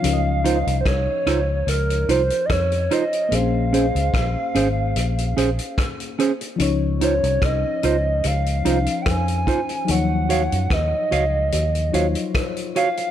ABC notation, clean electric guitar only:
X:1
M:4/4
L:1/8
Q:"Swing 16ths" 1/4=73
K:Db
V:1 name="Clean electric guitar"
z [EFc] z [EFc] z [EFc] z [EFc] | z [DAc] z [DAc] z [DAc] z [DAc] | z [EFc] z [EFc] z [EFc] z [EFc] | z [Gdf] z [Gdf] z [Gdf] z [Gdf] |]